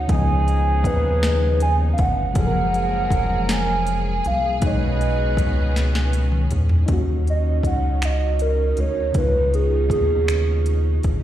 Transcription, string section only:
Already playing: C#4 D#4
0.09 B3
2.36 G#3 A#3 G#4
4.61 D#3 B3 C#4
6.87 F#3 C#4 D#4
9.13 B3 C#4

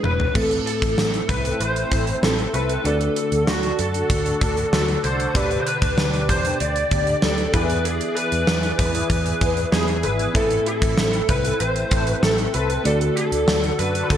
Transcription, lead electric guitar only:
0.04 B4
0.36 A4
0.66 A4
1.29 B4
1.61 C5
2.24 A4
2.55 B4
2.86 A4
3.48 F#4
3.79 A4
4.73 A4
5.04 C5
5.36 B4
5.61 C5
5.67 B4
6.30 C5
6.61 D5
7.23 A4
7.54 B4
7.86 G#4
8.16 B4
8.78 B4
9.72 G#4
10.04 B4
10.36 A4
10.67 A4
11.30 B4
11.61 C5
12.07 B4
12.23 A4
12.54 B4
12.86 A4
13.17 A4
13.79 B4
14.04 B4
14.11 A4

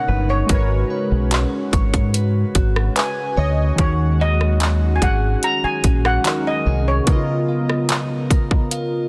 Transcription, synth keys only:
Already playing: B2 A#3 D#4 C#5
0.46 G#3 F#4 A#4
0.52 B4 C#5
2.97 G#5
3.38 D#5
3.76 D#3 C#4 F#4
3.82 G#4 F#5
6.24 D#3 C#4 F#4 G#4
6.28 A#4
7.04 C#3 B3
7.08 D#4 A#4 D#5
7.14 F4

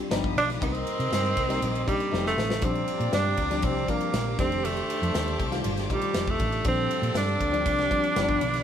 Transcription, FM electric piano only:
Already playing: G3 C4 D4 F4 G4
0.10 F3 B3 D4 D#4
0.61 G3 A#3 C4 D#4
1.48 G3 A#3 C4 D#4
1.87 G3 A#3 D4 D#4
2.12 G3 A3 C4 D#4
2.62 F3 G3 C4 D4
3.50 F3 G3 C4 D4
3.88 F3 G3 C4 D4
4.38 D#3 G3 A3 D4
5.51 D#3 G3 A3 F4
5.90 D#3 G3 A3 D#4
6.64 F3 G3 C4 D4
7.52 F3 G3 C4 D4
7.90 F3 G3 C4 D4
8.15 D#3 F3 B3 C4
8.23 D4

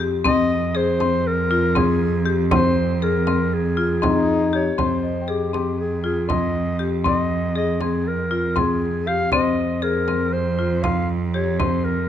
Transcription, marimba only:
0.00 G4
0.25 C4
0.75 G#4
1.01 C4
1.51 F4
1.75 C4
2.26 G4
2.51 C4
3.02 G#4
3.27 C4
3.77 F4
4.02 C4
4.53 G4
4.78 C4
5.28 G#4
5.54 C4
6.04 F4
6.29 C4
6.79 G4
7.04 C4
7.56 G#4
7.81 C4
8.31 F4
8.56 C4
9.07 G4
9.32 C4
9.82 G#4
10.08 C4
10.59 F4
10.84 C4
11.34 G4
11.60 C4

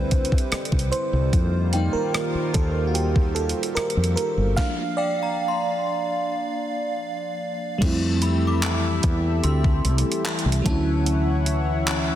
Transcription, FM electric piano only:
Already playing: B4 C5
0.92 C5
1.74 G3 A#3 D#4
1.93 A#4
2.54 A4
2.87 F#4
2.94 G4
3.35 A4
3.75 A#4
4.16 A#4
4.56 F3 A#3 D4 F5
4.97 D5
7.78 G3 A3
7.83 C4 E4
10.62 F#3 A3
10.67 C#4 E4

